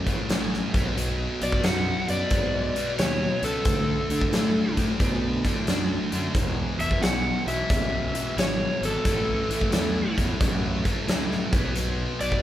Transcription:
0.07 distorted electric guitar A2 E3 A3, kick, closed hi-hat
0.29 fingered electric bass A1, distorted electric guitar A2 E3 A3, snare, closed hi-hat
0.54 snare
0.73 fingered electric bass B1, distorted electric guitar B2 F#3 B3, kick, closed hi-hat
0.96 fingered electric bass B1, distorted electric guitar B2 F#3 B3, closed hi-hat
1.41 fingered electric bass B1, distorted electric guitar B2 F#3 B3, electric slide guitar D5, closed hi-hat
1.52 kick
1.63 fingered electric bass F#2, distorted electric guitar B2 F#3 B3, electric slide guitar F#5, snare, closed hi-hat
2.08 fingered electric bass F#2, distorted electric guitar B2 F#3 B3, electric slide guitar D5, closed hi-hat
2.30 fingered electric bass G#2, distorted electric guitar B2 F#3 B3, kick, closed hi-hat
2.76 distorted electric guitar B2 F#3 B3, closed hi-hat
2.98 fingered electric bass D#2, distorted electric guitar B2 F#3 B3, electric slide guitar C#5, snare, closed hi-hat
3.42 fingered electric bass C#2, distorted electric guitar B2 F#3 B3, electric slide guitar A4, closed hi-hat
3.65 fingered electric bass D2, distorted electric guitar D3 A3 D4, kick, closed hi-hat
4.09 fingered electric bass D2, distorted electric guitar D3 A3 D4, closed hi-hat
4.21 kick
4.32 fingered electric bass A2, distorted electric guitar D3 A3 D4, snare, closed hi-hat
4.77 fingered electric bass A2, distorted electric guitar D3 A3 D4, kick, closed hi-hat
5.00 fingered electric bass B2, distorted electric guitar D3 A3 D4, kick, closed hi-hat
5.45 distorted electric guitar D3 A3 D4, kick, closed hi-hat
5.67 fingered electric bass F#2, distorted electric guitar D3 A3 D4, snare, closed hi-hat
6.12 fingered electric bass F#2, distorted electric guitar D3 A3 D4, closed hi-hat
6.34 fingered electric bass E1, distorted electric guitar E2 B2 E3, kick, closed hi-hat
6.79 fingered electric bass E1, distorted electric guitar E2 B2 E3, electric slide guitar E5, closed hi-hat
6.91 kick
7.02 fingered electric bass B1, distorted electric guitar E2 B2 E3, electric slide guitar F#5, snare, closed hi-hat
7.46 fingered electric bass B1, distorted electric guitar E2 B2 E3, electric slide guitar E5, closed hi-hat
7.70 fingered electric bass C#2, distorted electric guitar E2 B2 E3, kick, closed hi-hat
8.15 distorted electric guitar E2 B2 E3, closed hi-hat
8.36 fingered electric bass G#1, distorted electric guitar E2 B2 E3, electric slide guitar C#5, snare, closed hi-hat
8.81 fingered electric bass G#1, distorted electric guitar E2 B2 E3, closed hi-hat
8.85 electric slide guitar A4
9.05 fingered electric bass A1, distorted electric guitar A2 E3 A3, kick, closed hi-hat
9.49 fingered electric bass A1, distorted electric guitar A2 E3 A3, closed hi-hat
9.61 kick
9.72 fingered electric bass E2, distorted electric guitar A2 E3 A3, snare, closed hi-hat
10.17 fingered electric bass E2, distorted electric guitar A2 E3 A3, kick, closed hi-hat
10.40 fingered electric bass F#2, distorted electric guitar A2 E3 A3, kick, closed hi-hat
10.84 distorted electric guitar A2 E3 A3, kick, closed hi-hat
11.08 fingered electric bass C#2, distorted electric guitar A2 E3 A3, snare, closed hi-hat
11.32 snare
11.52 fingered electric bass B1, distorted electric guitar B2 F#3 B3, kick, closed hi-hat
11.75 fingered electric bass B1, distorted electric guitar B2 F#3 B3, closed hi-hat
12.20 fingered electric bass B1, distorted electric guitar B2 F#3 B3, electric slide guitar D5, closed hi-hat
12.32 kick

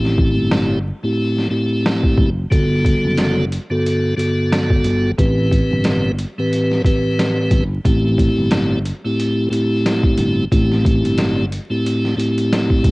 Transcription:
Already playing: fretless electric bass A1, tonewheel organ A2 A3 C4 E4 G4
0.05 snare
0.18 kick
0.38 fretless electric bass G1
0.51 snare
1.03 tonewheel organ A2 A3 C4 E4 G4
1.38 snare
1.50 tonewheel organ A2 A3 C4 E4 G4
1.86 snare
2.03 kick
2.18 fretless electric bass F#1, kick
2.50 fretless electric bass G1, tonewheel organ D3 G3 B3 F#4 A4, kick, closed hi-hat
2.85 kick, closed hi-hat
3.05 fretless electric bass F#1
3.17 snare, closed hi-hat
3.52 closed hi-hat
3.70 tonewheel organ G2 D3 B3 F#4 A4
3.86 closed hi-hat
4.16 tonewheel organ G2 D3 B3 F#4 A4, closed hi-hat
4.53 snare, closed hi-hat
4.70 kick
4.84 fretless electric bass G1, closed hi-hat
5.17 fretless electric bass A1, tonewheel organ A2 E3 C4 G4 B4, kick, closed hi-hat
5.51 kick, closed hi-hat
5.71 fretless electric bass G1
5.84 snare, closed hi-hat
6.19 closed hi-hat
6.38 tonewheel organ A2 E3 C4 G4 B4
6.53 closed hi-hat
6.72 snare
6.85 tonewheel organ A2 E3 C4 G4 B4, kick, closed hi-hat
7.19 snare, closed hi-hat
7.51 fretless electric bass G1, kick, closed hi-hat
7.85 fretless electric bass A1, tonewheel organ A2 A3 C4 E4 G4, kick, closed hi-hat
8.18 kick, closed hi-hat
8.38 fretless electric bass G1
8.51 snare, closed hi-hat
8.85 closed hi-hat
9.04 tonewheel organ A2 A3 C4 E4 G4
9.20 closed hi-hat
9.50 tonewheel organ A2 A3 C4 E4 G4, closed hi-hat
9.86 snare, closed hi-hat
10.03 kick
10.18 fretless electric bass G1, closed hi-hat
10.51 fretless electric bass A1, tonewheel organ A2 A3 C4 E4 G4, kick, closed hi-hat
10.72 snare
10.85 kick, closed hi-hat
11.05 fretless electric bass G1, closed hi-hat
11.18 snare, closed hi-hat
11.52 closed hi-hat
11.70 tonewheel organ A2 A3 C4 E4 G4
11.86 closed hi-hat
12.05 snare
12.16 tonewheel organ A2 A3 C4 E4 G4, closed hi-hat
12.38 closed hi-hat
12.53 snare, closed hi-hat
12.70 kick
12.84 fretless electric bass F#1, kick, closed hi-hat

